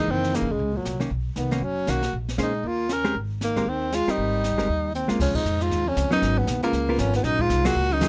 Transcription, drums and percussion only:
0.08 brush sweep soft
0.24 snare soft
0.34 snare soft
0.34 hi-hat pedal soft
0.60 brush sweep soft
0.85 snare soft
0.85 hi-hat pedal soft
1.00 snare soft
1.11 brush sweep soft
1.36 snare soft
1.36 hi-hat pedal soft
1.51 snare soft
1.62 brush sweep soft
1.87 snare soft
1.87 hi-hat pedal medium
2.02 snare soft
2.13 brush sweep soft
2.29 snare soft
2.38 snare soft
2.38 hi-hat pedal soft
2.64 brush sweep soft
2.89 snare soft
2.89 hi-hat pedal medium
3.05 snare soft
3.15 brush sweep soft
3.41 snare soft
3.41 hi-hat pedal soft
3.56 snare soft
3.66 brush sweep soft
3.92 snare soft
3.92 hi-hat pedal soft
4.08 snare soft
4.18 brush sweep soft
4.44 snare soft
4.44 hi-hat pedal soft
4.59 snare soft
4.69 brush sweep soft
4.95 hi-hat pedal soft
5.09 snare soft
5.20 brush sweep soft
5.20 kick medium
5.20 snare soft
5.20 crash medium
5.35 kick medium
5.35 crash medium
5.45 hi-hat pedal medium
5.61 snare soft
5.71 brush sweep soft
5.71 snare soft
5.97 snare medium
5.97 hi-hat pedal medium
6.11 snare soft
6.22 brush sweep soft
6.22 snare soft
6.47 snare medium
6.47 hi-hat pedal soft
6.62 snare soft
6.73 brush sweep soft
6.73 snare soft
6.98 snare medium
6.98 hi-hat pedal soft
7.13 snare soft
7.24 brush sweep soft
7.24 snare soft
7.39 kick soft
7.50 snare medium
7.50 hi-hat pedal soft
7.65 snare medium
7.65 ride medium
7.75 brush sweep soft
8.01 snare medium
8.01 hi-hat pedal medium

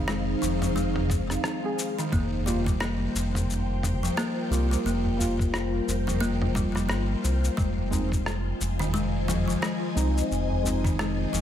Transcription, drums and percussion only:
0.08 cross-stick loud
0.08 shaker soft
0.43 shaker medium
0.62 mid tom medium
0.62 shaker soft
0.77 shaker soft
0.96 mid tom medium
1.10 kick loud
1.10 mid tom medium
1.10 shaker medium
1.30 cross-stick soft
1.30 shaker soft
1.44 cross-stick loud
1.44 shaker soft
1.79 shaker medium
1.99 shaker soft
2.12 kick loud
2.12 shaker soft
2.33 udu medium
2.47 udu medium
2.47 shaker medium
2.66 kick loud
2.66 shaker soft
2.81 cross-stick loud
2.81 shaker soft
3.16 shaker medium
3.35 mid tom medium
3.35 shaker soft
3.50 shaker soft
3.83 mid tom medium
3.83 shaker medium
4.04 shaker soft
4.17 cross-stick loud
4.17 shaker soft
4.53 shaker medium
4.73 shaker soft
4.87 shaker soft
5.05 udu medium
5.20 udu medium
5.20 shaker medium
5.39 kick loud
5.39 shaker soft
5.54 cross-stick loud
5.54 shaker soft
5.89 shaker medium
6.08 mid tom medium
6.08 shaker soft
6.23 shaker soft
6.42 mid tom medium
6.55 kick loud
6.55 mid tom medium
6.55 shaker medium
6.76 cross-stick soft
6.76 shaker soft
6.89 cross-stick loud
6.89 shaker soft
7.25 shaker medium
7.44 shaker soft
7.58 kick loud
7.58 shaker soft
7.77 udu medium
7.91 udu loud
7.91 shaker medium
8.12 kick loud
8.12 shaker soft
8.26 cross-stick loud
8.26 shaker soft
8.61 shaker medium
8.80 mid tom medium
8.80 shaker soft
8.95 shaker soft
9.28 mid tom medium
9.28 shaker medium
9.49 shaker soft
9.63 cross-stick medium
9.63 shaker soft
9.97 shaker medium
10.18 shaker soft
10.32 shaker soft
10.51 udu medium
10.65 udu medium
10.65 shaker medium
10.84 kick loud
10.84 shaker soft
10.99 cross-stick loud
10.99 shaker soft
11.34 shaker medium

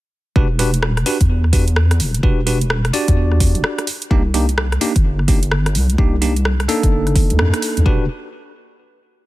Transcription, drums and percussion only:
0.36 kick loud
0.59 open hi-hat loud
0.74 closed hi-hat medium
0.83 cross-stick loud
0.97 cross-stick medium
0.97 closed hi-hat soft
1.06 open hi-hat loud
1.21 kick loud
1.21 closed hi-hat medium
1.44 cross-stick soft
1.53 kick loud
1.53 open hi-hat loud
1.68 closed hi-hat medium
1.76 cross-stick loud
1.91 cross-stick medium
1.91 closed hi-hat medium
2.00 open hi-hat loud
2.14 closed hi-hat medium
2.23 kick loud
2.47 open hi-hat loud
2.61 closed hi-hat medium
2.70 cross-stick loud
2.85 cross-stick medium
2.85 closed hi-hat soft
2.94 open hi-hat loud
3.08 kick loud
3.08 closed hi-hat medium
3.32 cross-stick soft
3.40 kick loud
3.40 open hi-hat loud
3.55 closed hi-hat medium
3.64 cross-stick loud
3.79 cross-stick medium
3.79 closed hi-hat medium
3.87 open hi-hat loud
4.02 closed hi-hat medium
4.11 kick loud
4.34 open hi-hat loud
4.49 closed hi-hat medium
4.58 cross-stick loud
4.72 cross-stick medium
4.72 closed hi-hat soft
4.81 open hi-hat loud
4.96 kick loud
4.96 closed hi-hat medium
5.19 cross-stick soft
5.28 kick loud
5.28 open hi-hat loud
5.43 closed hi-hat medium
5.52 cross-stick loud
5.66 cross-stick medium
5.66 closed hi-hat medium
5.75 open hi-hat loud
5.90 closed hi-hat medium
5.98 kick loud
6.22 open hi-hat loud
6.36 closed hi-hat medium
6.45 cross-stick loud
6.60 cross-stick medium
6.60 closed hi-hat soft
6.69 open hi-hat loud
6.83 kick loud
6.83 closed hi-hat medium
7.07 cross-stick soft
7.07 closed hi-hat soft
7.16 kick loud
7.16 open hi-hat loud
7.30 closed hi-hat medium
7.39 cross-stick loud
7.54 cross-stick medium
7.54 closed hi-hat medium
7.62 open hi-hat loud
7.77 closed hi-hat medium
7.86 kick loud

